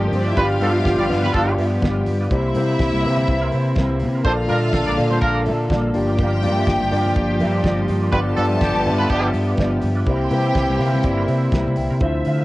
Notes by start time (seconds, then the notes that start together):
Already playing: F3 A#3 D4 F4 G4 C5 D5
0.02 A#3 A#4, muted clean electric guitar stroke, high conga
0.12 G2 C4 C5, muted clean electric guitar stroke, open hi-hat, low conga
0.22 D4 D5
0.26 E4 F4 A#4 D5 E5
0.36 G1 B3 D4 F4 G4 B4 D5 F5, kick, closed hi-hat, muted conga
0.51 muted clean electric guitar stroke
0.60 G2 B3 D4 F4 G4 A4 B4 D5 F5, open hi-hat, muted conga, high conga
0.75 F4 B4 E5
0.85 G1 B3 D4 G4, muted clean electric guitar stroke, kick, snare, closed hi-hat
0.98 G1 G4 B4 D5, muted clean electric guitar stroke, high conga
1.09 G2 B3 D4 F4 G4 B4 D5, open hi-hat, muted conga, low conga
1.23 F4 G4 B4, muted clean electric guitar stroke, snare, high conga, low conga
1.33 G1 D4 F4 A4, muted clean electric guitar stroke, kick, closed hi-hat
1.47 F4 B4 D5
1.57 G2 F4 B4 E5, open hi-hat, muted conga
1.71 muted clean electric guitar stroke
1.82 G1 F4 B4 D5, kick, snare, closed hi-hat, high conga
1.96 muted clean electric guitar stroke, high conga
2.06 G2, muted clean electric guitar stroke, open hi-hat, low conga
2.21 F4 B4 D5
2.31 C2 C3 A#3 C4 E4 G4 A#4 C5 E5, kick, closed hi-hat
2.45 muted clean electric guitar stroke
2.55 C3 A#3 C4 E4 G4 A#4 C5, open hi-hat, muted conga, high conga
2.68 C4 E4 C5
2.79 C2, muted clean electric guitar stroke, kick, snare, closed hi-hat, muted conga
2.93 C2, muted clean electric guitar stroke, high conga
3.03 C3 A#3 C4 E4 G4 A#4 B4, open hi-hat, low conga
3.10 C5
3.17 muted clean electric guitar stroke, high conga, low conga
3.27 C2, muted clean electric guitar stroke, kick, closed hi-hat
3.41 C4 E4 A#4
3.52 C3 C4 E4 C5, open hi-hat, muted conga
3.65 muted clean electric guitar stroke
3.75 C2 C4 E4 A#4, kick, snare, closed hi-hat, high conga
3.90 muted clean electric guitar stroke, high conga
4.00 C3, muted clean electric guitar stroke, open hi-hat, muted conga, low conga
4.15 C4 E4 A#4
4.24 A#1 D3 A#3 D4 F4 A4 C5 D5 F5, kick, closed hi-hat
4.38 muted clean electric guitar stroke
4.48 A#2 A#3 D4 F4 A4 A#4 D5, open hi-hat, muted conga, high conga
4.62 F4 A4 E5
4.73 A#1 D4 F4 A4, muted clean electric guitar stroke, kick, snare, closed hi-hat
4.86 A#1 D4 A#4 D5, high conga
4.96 A#2 A#3 D4 F4 A4 D5, open hi-hat, muted conga, low conga
5.09 F4 A4 C5, muted clean electric guitar stroke, high conga, low conga
5.21 A#1 D4 F4 A#4, muted clean electric guitar stroke, kick, closed hi-hat
5.35 F4 A4 D5
5.45 A#2 F4 A4 E5, open hi-hat, muted conga
5.58 muted clean electric guitar stroke
5.68 A#1 F4 A4 D5, kick, snare, closed hi-hat, high conga
5.82 muted clean electric guitar stroke, high conga
5.93 G1 F3 A#3 D4 F4 G4 D5 G5, muted clean electric guitar stroke, open hi-hat, low conga
6.07 F4 A#4 D5
6.18 F4 A#4 D5, kick, closed hi-hat
6.31 muted clean electric guitar stroke
6.41 G2 A#3 D4 F4 G4 A#4 D5, open hi-hat, muted conga, high conga
6.56 F4 A#4 E5
6.66 G1, muted clean electric guitar stroke, kick, snare, closed hi-hat, muted conga
6.80 G1, muted clean electric guitar stroke, high conga
6.91 G2 A#3 D4 F4 G4 A#4 D5, open hi-hat, muted conga, low conga
7.05 muted clean electric guitar stroke, snare, high conga, low conga
7.15 G1, muted clean electric guitar stroke, kick, closed hi-hat, muted conga
7.29 muted clean electric guitar stroke
7.40 G2 F4 A#4 E5, open hi-hat, muted conga
7.54 F4 A#4 D5
7.63 G1 F4 A#4 D5, kick, snare, closed hi-hat, high conga
7.78 muted clean electric guitar stroke, high conga
7.88 G2, muted clean electric guitar stroke, open hi-hat, muted conga, low conga
8.02 F4 A#4 D5
8.12 G1 B3 D4 F4 G4 A4 B4 D5 A5, kick, closed hi-hat, muted conga
8.26 muted clean electric guitar stroke
8.36 G2 B3 D4 F4 G4 A4 B4 D5, open hi-hat, high conga
8.50 F4 B4 E5
8.60 G1 B3 D4 G4, muted clean electric guitar stroke, kick, snare, closed hi-hat, muted conga
8.74 G1 B3 D4 G4, muted clean electric guitar stroke, high conga
8.85 G2 B3 D4 F4 G4 B4 D5 E5, open hi-hat, low conga
8.99 F4 G4 B4, muted clean electric guitar stroke, high conga, low conga
9.09 G1 B3 D4 F4 G4 B4 D5, kick, closed hi-hat, muted conga
9.23 muted clean electric guitar stroke
9.34 G2, muted clean electric guitar stroke, open hi-hat, muted conga
9.47 F4 B4 D5
9.57 G1 F4 B4 D5, kick, snare, closed hi-hat, muted conga, high conga
9.72 muted clean electric guitar stroke, high conga
9.82 G2, muted clean electric guitar stroke, open hi-hat, low conga
9.95 F4 B4 D5
10.05 C2 C3 A#3 C4 E4 G4 A#4 C5 G5, kick, closed hi-hat
10.20 muted clean electric guitar stroke
10.29 C3 A#3 C4 E4 G4 A#4 B4, open hi-hat, high conga
10.38 C5
10.43 C4 E4 C5
10.55 C2, muted clean electric guitar stroke, kick, snare, closed hi-hat
10.68 C2, muted clean electric guitar stroke, high conga
10.79 C3 A#3 C4 E4 G4 A#4 C5, open hi-hat, muted conga, low conga
10.93 muted clean electric guitar stroke, high conga, low conga
11.03 G1 D5, muted clean electric guitar stroke, kick, closed hi-hat, muted conga
11.17 C4 E4 A#4
11.27 C3 C4 E4 C5, open hi-hat, muted conga
11.42 muted clean electric guitar stroke
11.52 C2 C4 E4 A#4 E5, kick, snare, closed hi-hat, high conga
11.66 C3, muted clean electric guitar stroke, high conga
11.76 C2 G5, muted clean electric guitar stroke, open hi-hat, muted conga, low conga
11.90 C3 C4 E4 A#4
12.00 D2 C3 F3 A3 D4 E4 F4 C5 E5, kick, closed hi-hat
12.15 muted clean electric guitar stroke
12.25 D3 F4 C5 E5, open hi-hat
12.39 F4 C5 F5